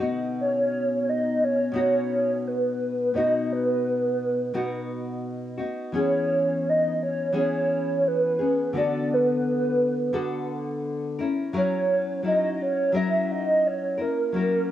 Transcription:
0.00 1.71 B2 soft
0.00 1.73 B3 medium
0.00 1.73 D#4 medium
0.00 1.74 F#4 medium
0.41 1.11 C#5 loud
1.09 1.46 D#5 loud
1.44 1.77 C#5 loud
1.72 3.13 B2 medium
1.72 3.15 B3 medium
1.72 3.15 D#4 medium
1.76 3.15 F#4 medium
1.76 2.49 C#5 loud
2.48 3.17 B4 medium
3.14 4.53 B2 medium
3.14 4.54 B3 medium
3.14 4.54 D#4 medium
3.14 4.54 F#4 medium
3.14 3.54 D#5 loud
3.52 4.91 B4 medium
4.54 5.59 B2 medium
4.54 5.60 B3 medium
4.54 5.58 D#4 medium
4.54 5.56 F#4 medium
5.58 5.92 B3 soft
5.58 5.94 D#4 soft
5.58 5.94 F#4 medium
5.92 7.32 E3 medium
5.92 7.33 B3 medium
5.92 7.33 C#4 medium
5.92 7.33 G#4 medium
5.99 6.71 C#5 loud
6.69 7.02 D#5 medium
7.03 7.34 C#5 loud
7.33 8.39 E3 medium
7.33 8.41 B3 medium
7.33 8.39 C#4 medium
7.33 8.38 G#4 medium
7.37 8.09 C#5 loud
8.08 8.76 B4 medium
8.39 8.73 B3 soft
8.39 8.75 C#4 soft
8.39 8.74 G#4 medium
8.73 10.12 D3 medium
8.73 10.12 B3 medium
8.73 10.13 F#4 medium
8.77 10.13 A4 medium
8.77 9.15 D5 loud
9.14 10.52 B4 medium
10.13 11.19 D3 medium
10.13 11.19 B3 medium
10.13 11.20 F#4 medium
10.13 11.18 A4 medium
11.19 11.52 C#4 soft
11.19 11.53 E4 medium
11.19 11.53 A#4 medium
11.53 12.22 F#3 medium
11.53 12.23 C#4 medium
11.53 12.23 E4 medium
11.53 12.25 A#4 medium
11.53 12.22 C#5 loud
12.23 12.92 F#3 medium
12.23 12.92 C#4 medium
12.23 12.92 E4 medium
12.23 12.94 A#4 medium
12.23 12.64 D#5 medium
12.62 12.98 C#5 loud
12.92 14.02 F#3 medium
12.92 13.99 C#4 medium
12.92 13.98 E4 medium
12.92 13.98 A#4 medium
12.96 13.31 E5 loud
13.32 13.69 D#5 loud
13.67 14.01 C#5 medium
13.98 14.33 C#4 soft
13.98 14.34 E4 soft
13.98 14.34 A#4 medium
13.98 14.71 A#4 medium
14.33 14.71 F#3 medium
14.33 14.71 C#4 medium
14.33 14.71 E4 medium
14.33 14.71 A#4 medium

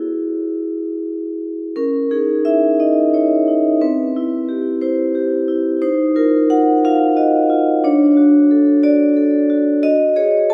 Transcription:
0.00 0.66 E4 medium
0.00 1.71 F#4 soft
0.00 1.71 G#4 soft
1.76 3.77 C#4 medium
1.76 2.11 A#4 medium
2.11 2.66 D#4 soft
2.11 2.45 G#4 medium
2.45 3.00 E4 soft
2.45 2.79 E5 medium
2.80 3.34 D#4 soft
2.80 3.14 D#5 medium
3.14 3.68 E4 soft
3.14 3.81 C#5 medium
3.48 3.81 D#4 soft
3.81 5.78 C4 medium
3.81 4.82 B4 medium
4.16 4.69 E4 soft
4.49 5.02 G4 soft
4.82 5.35 E4 soft
4.82 5.81 C5 medium
5.15 5.68 G4 soft
5.48 5.82 E4 soft
5.82 7.81 D#4 medium
5.82 6.16 C5 medium
6.16 6.70 F4 medium
6.16 6.50 A#4 medium
6.50 7.04 F#4 medium
6.50 6.84 F#5 medium
6.85 7.38 F4 medium
6.85 7.18 F5 medium
7.17 7.71 F#4 soft
7.17 7.85 D#5 medium
7.50 7.84 F4 medium
7.84 9.80 D4 medium
7.84 8.84 C#5 medium
8.17 8.71 F#4 medium
8.51 9.04 A4 medium
8.83 9.37 F#4 medium
8.83 9.84 D5 medium
9.17 9.70 A4 medium
9.50 9.82 F#4 medium
9.83 10.54 F#4 medium
9.83 10.17 D#5 loud
10.16 10.54 G#4 medium
10.16 10.51 C#5 medium
10.50 10.54 A4 medium
10.50 10.54 A5 loud

